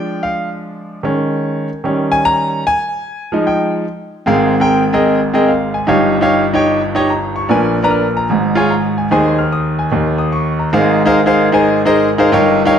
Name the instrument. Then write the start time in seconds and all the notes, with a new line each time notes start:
grand piano
Already playing: F3 G#3 D4 G5
0.23 F5
1.03 D#3 G#3 C#4
1.84 D#3 G3 C#4
2.12 G#5
2.25 A#5
2.67 G#5
3.32 F3 G#3 D#4
3.47 G5
4.26 G#1 G#2 C4 G#4 A#4 F5
4.60 C4 G#4 A#4 G5
4.93 C4 G#4 A#4 D#5
5.33 C4 G#4 A#4 D#5
5.48 F5
5.74 G#5
5.87 G1 G2 D#4 G4 C#5 F5
6.21 D#4 G4 C#5 F5
6.54 D#4 G4 C#5 G5
6.95 D#4 G4 C#5 D#5
7.10 A#5
7.36 C#6
7.49 A#1 A#2 D4 A#4 B4 G#5
7.82 D4 A#4 B4 A#5
7.91 F6
8.17 A#5
8.30 G#1 G#2
8.55 F4 G#4 C#5 G#5
8.70 A#5
8.98 G#5
9.11 D#2 D#3 D#4 G#4 C5 G#5
9.38 F6
9.52 D#6
9.79 G#5
9.92 D#2 D#3
10.18 D#6
10.32 C#6
10.59 A#5
10.73 G#1 G#2 D#4 G#4 A#4 C5 F5
11.06 D#4 G#4 A#4 C5 F5
11.26 D#4 G#4 A#4 C5 F5
11.52 D#4 G#4 A#4 C5 G#5
11.85 D#4 G#4 A#4 C5 D#5
12.18 D#4 G#4 A#4 C5 F5
12.32 G1 G2 D#4 G4 A#4 C#5 F5
12.65 D#4 G4 A#4 C#5 F5